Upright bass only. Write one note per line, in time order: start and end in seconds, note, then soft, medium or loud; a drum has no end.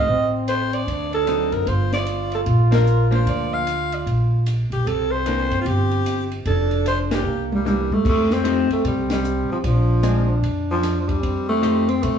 0.07 0.83 A1 medium
0.87 1.48 D2 medium
1.51 1.65 F#1 medium
1.66 2.42 G1 medium
2.46 3.22 A#1 medium
3.26 4.02 D2 medium
4.06 4.67 A#1 medium
4.70 4.84 B1 medium
4.86 5.47 C2 medium
5.51 5.64 G2 medium
5.65 6.41 G1 medium
6.46 7.21 F1 medium
7.24 7.85 C2 medium
7.90 8.03 E2 medium
8.05 8.66 F2 medium
8.69 muted upright bass stroke soft
8.84 9.45 C2 medium
9.48 muted upright bass stroke soft
9.64 10.39 A#1 medium
10.43 11.19 F2 medium
11.23 11.99 F2 medium
12.03 12.19 C2 medium